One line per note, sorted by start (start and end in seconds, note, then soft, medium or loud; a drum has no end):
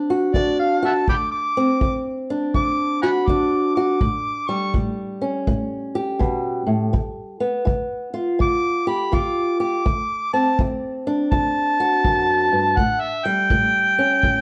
0.00 0.29 D2 medium
0.00 1.04 C4 medium
0.00 0.34 D4 medium
0.10 0.81 F#4 medium
0.34 1.03 D2 medium
0.34 1.05 D4 medium
0.34 0.58 D5 loud
0.34 kick medium
0.59 0.82 F5 medium
0.82 1.05 F#4 medium
0.82 0.93 E5 medium
0.82 0.93 F#5 medium
0.82 1.08 A5 medium
1.08 1.76 D2 medium
1.08 1.16 G5 medium
1.08 1.15 B5 medium
1.08 1.31 D6 loud
1.08 kick medium
1.31 2.03 D6 loud
1.57 3.99 C4 medium
1.81 2.49 D2 medium
1.81 kick medium
2.30 3.28 D4 medium
2.54 3.22 D2 medium
2.54 3.00 D6 loud
2.54 kick medium
3.02 3.75 F#4 medium
3.02 3.10 F#5 medium
3.02 3.09 G#5 medium
3.02 3.29 B5 medium
3.28 3.96 D2 medium
3.28 3.98 D4 medium
3.28 3.73 D6 loud
3.28 kick medium
3.75 3.99 F#4 medium
3.75 4.49 D6 medium
4.01 4.69 A2 medium
4.01 kick medium
4.48 7.40 G3 medium
4.48 4.73 C#6 loud
4.74 5.42 A2 medium
4.74 kick medium
5.21 6.91 C#4 medium
5.47 6.15 A2 medium
5.47 kick medium
5.95 6.91 G4 medium
6.19 6.66 B2 medium
6.19 kick medium
6.66 6.93 A2 medium
6.93 7.61 G2 medium
6.93 kick medium
7.40 9.83 B3 medium
7.65 8.34 G2 medium
7.65 kick medium
8.14 9.11 F4 medium
8.39 9.07 G2 medium
8.39 8.86 D6 loud
8.39 kick medium
8.87 9.59 G4 medium
8.87 9.16 B5 loud
9.12 9.80 G2 medium
9.12 9.83 F4 medium
9.12 9.59 D6 loud
9.12 kick medium
9.60 9.83 G4 medium
9.60 10.31 D6 medium
9.85 10.53 D2 medium
9.85 kick medium
10.33 12.75 C4 medium
10.33 10.58 A5 loud
10.59 11.27 D2 medium
10.59 kick medium
11.07 12.75 D4 medium
11.32 12.00 D2 medium
11.32 12.78 A5 loud
11.32 kick medium
11.80 12.75 F#4 medium
12.05 12.51 F#2 medium
12.05 kick medium
12.52 12.78 G2 medium
12.77 13.46 A2 medium
12.77 13.02 F#5 loud
12.77 kick medium
13.01 13.27 E5 loud
13.25 14.41 G3 medium
13.25 14.41 G5 loud
13.50 14.18 A2 medium
13.50 kick medium
13.98 14.41 C#4 medium
14.23 14.41 A2 medium
14.23 kick medium